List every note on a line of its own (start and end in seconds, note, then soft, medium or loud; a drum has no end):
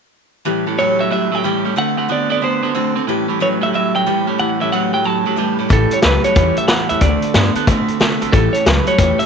0.45 0.66 A2 medium
0.45 0.64 A2 medium
0.45 0.66 E3 medium
0.45 0.65 E3 medium
0.45 0.67 G3 medium
0.45 0.67 C#4 medium
0.45 0.66 G4 medium
0.45 0.65 A4 medium
0.67 0.77 A2 medium
0.67 0.78 E3 medium
0.67 0.79 G3 soft
0.67 0.78 C#4 soft
0.67 0.79 G4 medium
0.67 0.78 A4 medium
0.78 0.97 A2 medium
0.78 1.00 A2 medium
0.78 1.00 E3 medium
0.78 0.98 F#3 medium
0.78 1.00 G3 medium
0.78 1.00 C#4 medium
0.78 1.00 G4 medium
0.78 1.00 A4 medium
0.78 1.00 C#5 medium
0.99 1.09 A2 medium
0.99 1.10 F#3 medium
0.99 1.10 G3 soft
0.99 1.11 C#4 soft
0.99 1.12 G4 soft
0.99 1.12 A4 medium
0.99 1.11 E5 medium
1.11 1.30 A2 medium
1.11 1.30 F#3 medium
1.11 1.32 G3 medium
1.11 1.33 C#4 medium
1.11 1.33 G4 medium
1.11 1.32 A4 medium
1.11 1.35 E5 loud
1.32 1.43 A2 medium
1.32 1.43 F#3 medium
1.32 1.44 G3 soft
1.32 1.44 C#4 soft
1.32 1.44 G4 medium
1.32 1.45 A4 soft
1.32 1.66 G5 loud
1.44 1.63 A2 medium
1.44 1.65 A2 medium
1.44 1.65 E3 medium
1.44 1.63 G3 medium
1.44 1.66 G3 medium
1.44 1.65 C#4 medium
1.44 1.65 G4 medium
1.44 1.63 A4 medium
1.65 1.76 A2 medium
1.65 1.76 G3 medium
1.65 1.76 G3 soft
1.65 1.76 C#4 soft
1.65 1.76 G4 medium
1.65 1.76 A4 soft
1.76 1.98 D3 medium
1.76 1.96 D3 medium
1.76 1.97 A3 medium
1.76 1.96 A3 medium
1.76 1.98 C4 medium
1.76 1.97 F#4 medium
1.76 1.96 A4 medium
1.76 1.97 F#5 loud
1.97 2.08 D3 medium
1.97 2.08 A3 medium
1.97 2.08 C4 soft
1.97 2.08 F#4 soft
1.97 2.08 A4 medium
1.97 2.09 F#5 medium
2.08 2.30 D3 medium
2.08 2.28 D3 medium
2.08 2.30 A3 medium
2.08 2.29 B3 medium
2.08 2.30 C4 medium
2.08 2.30 F#4 medium
2.08 2.28 A4 medium
2.08 2.30 D5 medium
2.30 2.41 D3 medium
2.30 2.41 B3 medium
2.30 2.41 C4 soft
2.30 2.42 F#4 soft
2.30 2.42 A4 medium
2.30 2.43 D5 medium
2.41 2.61 D3 medium
2.41 2.63 A3 medium
2.41 2.61 B3 medium
2.41 2.64 C4 medium
2.41 2.64 F#4 medium
2.41 2.63 A4 medium
2.41 2.93 C5 medium
2.63 2.73 D3 medium
2.63 2.74 B3 medium
2.63 2.74 C4 soft
2.63 2.75 F#4 medium
2.63 2.75 A4 medium
2.75 2.94 D3 medium
2.75 2.96 D3 medium
2.75 2.96 A3 medium
2.75 2.94 C4 medium
2.75 2.96 C4 medium
2.75 2.97 F#4 medium
2.75 2.96 A4 medium
2.95 3.07 D3 medium
2.95 3.07 C4 medium
2.95 3.09 C4 medium
2.95 3.08 F#4 medium
2.95 3.08 A4 medium
3.07 3.27 A2 medium
3.07 3.29 A2 medium
3.07 3.27 E3 medium
3.07 3.29 E3 medium
3.07 3.29 G3 medium
3.07 3.29 C#4 medium
3.07 3.28 G4 medium
3.07 3.28 A4 medium
3.28 3.40 A2 medium
3.28 3.40 E3 medium
3.28 3.40 G3 medium
3.28 3.40 C#4 medium
3.28 3.40 G4 medium
3.28 3.40 A4 medium
3.40 3.60 A2 medium
3.40 3.62 A2 medium
3.40 3.62 E3 medium
3.40 3.60 F#3 medium
3.40 3.62 G3 medium
3.40 3.61 C#4 medium
3.40 3.61 G4 medium
3.40 3.60 A4 loud
3.40 3.48 C#5 medium
3.61 3.72 A2 medium
3.61 3.72 F#3 medium
3.61 3.73 G3 soft
3.61 3.74 C#4 soft
3.61 3.74 G4 soft
3.61 3.74 A4 medium
3.61 3.68 E5 medium
3.73 3.93 A2 medium
3.73 3.93 F#3 medium
3.73 3.95 G3 medium
3.73 3.95 C#4 medium
3.73 3.94 G4 medium
3.73 3.93 A4 medium
3.73 3.95 E5 medium
3.94 4.05 A2 medium
3.94 4.06 F#3 medium
3.94 4.05 G3 soft
3.94 4.06 C#4 medium
3.94 4.06 G4 soft
3.94 4.06 A4 medium
3.94 4.26 G5 medium
4.06 4.28 A2 medium
4.06 4.26 A2 medium
4.06 4.28 E3 medium
4.06 4.28 G3 medium
4.06 4.26 G3 loud
4.06 4.27 C#4 medium
4.06 4.26 G4 medium
4.06 4.26 A4 medium
4.27 4.38 A2 medium
4.27 4.38 G3 medium
4.27 4.38 G3 soft
4.27 4.38 C#4 soft
4.27 4.39 G4 soft
4.27 4.39 A4 medium
4.38 4.60 A2 medium
4.38 4.58 A2 medium
4.38 4.60 E3 medium
4.38 4.59 E3 medium
4.38 4.60 G3 medium
4.38 4.61 C#4 medium
4.38 4.60 G4 medium
4.38 4.60 A4 medium
4.38 4.59 F#5 medium
4.60 4.71 A2 medium
4.60 4.71 E3 medium
4.60 4.72 G3 soft
4.60 4.72 C#4 medium
4.60 4.72 G4 soft
4.60 4.73 A4 medium
4.60 4.72 E5 medium
4.72 4.91 A2 medium
4.72 4.93 A2 medium
4.72 4.94 E3 medium
4.72 4.91 F#3 medium
4.72 4.94 G3 medium
4.72 4.93 C#4 medium
4.72 4.92 G4 medium
4.72 4.92 A4 medium
4.72 4.92 F#5 medium
4.93 5.04 A2 medium
4.93 5.04 F#3 medium
4.93 5.03 G3 soft
4.93 5.04 C#4 soft
4.93 5.04 G4 soft
4.93 5.05 A4 medium
4.93 5.05 G5 medium
5.04 5.24 A2 medium
5.04 5.24 F#3 loud
5.04 5.26 G3 medium
5.04 5.25 C#4 medium
5.04 5.25 G4 medium
5.04 5.24 A4 medium
5.04 5.59 A5 medium
5.25 5.37 A2 medium
5.25 5.37 F#3 medium
5.25 5.36 G3 soft
5.25 5.36 C#4 soft
5.25 5.37 G4 soft
5.25 5.37 A4 medium
5.36 5.58 A2 medium
5.36 5.57 A2 medium
5.36 5.58 E3 medium
5.36 5.59 G3 medium
5.36 5.57 G3 medium
5.36 5.58 C#4 medium
5.36 5.58 G4 medium
5.36 5.57 A4 medium
5.58 5.69 A2 medium
5.58 5.70 G3 medium
5.58 5.68 G3 soft
5.58 5.69 C#4 medium
5.58 5.69 G4 medium
5.58 5.69 A4 medium
5.69 5.86 A1 medium
5.69 5.91 A2 medium
5.69 6.01 A2 medium
5.69 5.91 E3 medium
5.69 6.01 E3 medium
5.69 5.91 G3 medium
5.69 5.91 C#4 medium
5.69 5.90 G4 medium
5.69 5.90 A4 medium
5.69 5.93 A4 medium
5.69 kick loud
5.69 closed hi-hat medium
5.91 6.02 G3 soft
5.91 6.03 C#4 soft
5.91 6.03 G4 soft
5.91 6.03 A4 medium
5.91 5.98 C#5 medium
5.91 closed hi-hat medium
6.02 6.19 C#2 loud
6.02 6.22 A2 medium
6.02 6.23 F#3 medium
6.02 6.24 G3 medium
6.02 6.24 C#4 medium
6.02 6.24 G4 medium
6.02 6.23 B4 medium
6.02 snare loud
6.02 closed hi-hat medium
6.24 6.35 A2 medium
6.24 6.35 F#3 medium
6.24 6.34 G3 soft
6.24 6.34 C#4 soft
6.24 6.35 G4 medium
6.24 6.35 A4 medium
6.24 6.55 C#5 medium
6.24 closed hi-hat medium
6.35 6.52 E2 medium
6.35 6.57 A2 medium
6.35 6.67 A2 medium
6.35 6.57 E3 medium
6.35 6.67 E3 medium
6.35 6.57 G3 medium
6.35 6.57 C#4 medium
6.35 6.57 G4 medium
6.35 6.56 A4 medium
6.35 kick loud
6.35 closed hi-hat medium
6.57 6.67 G3 soft
6.57 6.68 C#4 soft
6.57 6.69 G4 medium
6.57 6.69 A4 medium
6.57 6.67 E5 medium
6.57 muted upright bass stroke medium
6.57 closed hi-hat medium
6.68 6.85 E2 medium
6.68 6.88 A2 medium
6.68 6.88 E3 loud
6.68 6.90 G3 medium
6.68 6.90 C#4 medium
6.68 6.89 A4 medium
6.68 6.89 F#5 loud
6.68 snare loud
6.68 closed hi-hat medium
6.89 6.99 E2 medium
6.89 7.01 A2 medium
6.89 7.01 E3 medium
6.89 7.02 G3 soft
6.89 7.02 C#4 soft
6.89 7.02 G4 soft
6.89 7.02 A4 medium
6.89 7.01 E5 loud
6.89 closed hi-hat medium
7.01 7.17 D2 medium
7.01 7.23 D3 medium
7.01 7.32 D3 medium
7.01 7.32 A3 medium
7.01 7.23 A3 medium
7.01 7.23 C4 medium
7.01 7.23 F#4 medium
7.01 7.22 A4 medium
7.01 7.52 D5 medium
7.01 kick loud
7.01 closed hi-hat medium
7.22 7.34 C4 soft
7.22 7.35 F#4 soft
7.22 7.35 A4 medium
7.22 muted upright bass stroke medium
7.22 closed hi-hat medium
7.34 7.50 G2 medium
7.34 7.54 D3 medium
7.34 7.55 A3 medium
7.34 7.54 B3 loud
7.34 7.56 C4 medium
7.34 7.55 F#4 medium
7.34 7.54 A4 medium
7.34 snare loud
7.34 closed hi-hat medium
7.55 7.66 D3 medium
7.55 7.67 B3 medium
7.55 7.66 C4 soft
7.55 7.67 F#4 medium
7.55 7.67 A4 medium
7.55 muted upright bass stroke medium
7.55 closed hi-hat medium
7.67 7.83 B2 medium
7.67 7.98 D3 medium
7.67 7.88 D3 medium
7.67 7.89 A3 medium
7.67 7.98 A3 medium
7.67 7.89 C4 loud
7.67 7.88 F#4 loud
7.67 7.88 A4 loud
7.67 kick loud
7.67 closed hi-hat medium
7.88 7.98 C4 medium
7.88 7.99 F#4 medium
7.88 8.00 A4 medium
7.88 muted upright bass stroke medium
7.88 closed hi-hat medium
8.00 8.16 C3 medium
8.00 8.19 D3 medium
8.00 8.21 A3 medium
8.00 8.20 A3 loud
8.00 8.21 C4 medium
8.00 8.21 F#4 medium
8.00 8.19 A4 medium
8.00 snare loud
8.00 closed hi-hat medium
8.21 8.30 B1 medium
8.21 8.32 D3 medium
8.21 8.32 A3 medium
8.21 8.33 C4 medium
8.21 8.33 F#4 medium
8.21 8.32 A4 medium
8.21 closed hi-hat medium
8.32 8.49 A1 medium
8.32 8.54 A2 medium
8.32 8.64 A2 medium
8.32 8.54 E3 medium
8.32 8.64 E3 medium
8.32 8.54 G3 medium
8.32 8.53 C#4 medium
8.32 8.52 G4 medium
8.32 8.54 A4 medium
8.32 8.51 A4 medium
8.32 kick loud
8.32 closed hi-hat medium
8.53 8.64 G3 soft
8.53 8.65 C#4 soft
8.53 8.65 G4 soft
8.53 8.65 A4 soft
8.53 8.65 C#5 medium
8.53 closed hi-hat medium
8.65 8.81 C#2 medium
8.65 8.85 A2 medium
8.65 8.85 F#3 medium
8.65 8.86 G3 medium
8.65 8.87 C#4 medium
8.65 8.86 G4 medium
8.65 8.85 A4 medium
8.65 8.87 B4 medium
8.65 snare loud
8.65 closed hi-hat medium
8.86 8.97 A2 medium
8.86 8.98 F#3 medium
8.86 8.99 G3 soft
8.86 8.98 C#4 soft
8.86 8.99 G4 medium
8.86 8.98 A4 soft
8.86 9.18 C#5 medium
8.86 closed hi-hat medium
8.98 9.14 E2 loud
8.98 9.26 A2 medium
8.98 9.20 A2 medium
8.98 9.26 E3 medium
8.98 9.20 E3 medium
8.98 9.20 G3 medium
8.98 9.20 C#4 medium
8.98 9.19 G4 medium
8.98 9.19 A4 medium
8.98 kick loud
8.98 closed hi-hat medium
9.19 9.26 G3 soft
9.19 9.26 C#4 soft
9.19 9.26 G4 medium
9.19 9.26 A4 medium
9.19 9.26 E5 medium
9.19 muted upright bass stroke medium
9.19 closed hi-hat medium